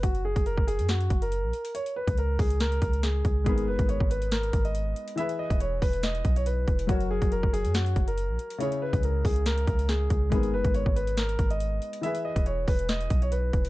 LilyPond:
<<
  \new Staff \with { instrumentName = "Grand piano" } { \time 4/4 \key gis \minor \tempo 4 = 140 fis'8 gis'8 ais'8 gis'8 fis'8. ais'4~ ais'16 | cis''8 b'8 ais'8 gis'8 ais'4 gis'4 | gis'8 b'8 cis''8 b'8 ais'8. dis''4~ dis''16 | e''8 dis''8 cis''8 b'8 dis''8. cis''16 b'4 |
fis'8 gis'8 ais'8 gis'8 fis'8. ais'4~ ais'16 | cis''8 b'8 ais'8 gis'8 ais'4 gis'4 | gis'8 b'8 cis''8 b'8 ais'8. dis''4~ dis''16 | e''8 dis''8 cis''8 b'8 dis''8. cis''16 b'4 | }
  \new Staff \with { instrumentName = "Grand piano" } { \time 4/4 \key gis \minor r1 | r1 | <gis b dis' ais'>1 | <e e' gis' b'>1 |
<fis fis' ais' cis''>1 | <cis cis' e' gis'>1 | <gis b dis' ais'>1 | <e e' gis' b'>1 | }
  \new Staff \with { instrumentName = "808-style bass" } { \clef bass \time 4/4 \key gis \minor fis,,8. fis,,8 fis,,8 fis,8. fis,,8. ais,,16 r8 | r8. cis,8. cis,4 cis,4 cis,8 | gis,,8 fis,,16 gis,,8 gis,,4~ gis,,16 gis,,4 r8 | r8. e,,8. e,,4 b,,4 e,,8 |
fis,,8. fis,,8 fis,,8 fis,8. fis,,8. ais,,16 r8 | r8. cis,8. cis,4 cis,4 cis,8 | gis,,8 fis,,16 gis,,8 gis,,4~ gis,,16 gis,,4 r8 | r8. e,,8. e,,4 b,,4 e,,8 | }
  \new DrumStaff \with { instrumentName = "Drums" } \drummode { \time 4/4 <hh bd>16 hh8 <hh bd>16 hh16 bd16 hh16 hh16 <hh sn>16 hh16 <hh bd>16 hh16 hh8 hh16 hh16 | hh16 hh8 <hh bd>16 hh8 <hho bd>16 hh16 <hh sn>16 hh16 <hh bd>16 hh16 <hh sn>8 <hh bd>8 | <hh bd>16 hh8 <hh bd>16 hh16 bd16 hh16 hh16 <hh sn>16 hh16 <hh bd>16 hh16 hh8 hh16 hh16 | hh16 hh8 <hh bd>16 hh8 <hho bd>16 hh16 <hh sn>16 hh16 <hh bd>16 hh16 hh8 <hh bd>16 hh16 |
<hh bd>16 hh8 <hh bd>16 hh16 bd16 hh16 hh16 <hh sn>16 hh16 <hh bd>16 hh16 hh8 hh16 hh16 | hh16 hh8 <hh bd>16 hh8 <hho bd>16 hh16 <hh sn>16 hh16 <hh bd>16 hh16 <hh sn>8 <hh bd>8 | <hh bd>16 hh8 <hh bd>16 hh16 bd16 hh16 hh16 <hh sn>16 hh16 <hh bd>16 hh16 hh8 hh16 hh16 | hh16 hh8 <hh bd>16 hh8 <hho bd>16 hh16 <hh sn>16 hh16 <hh bd>16 hh16 hh8 <hh bd>16 hh16 | }
>>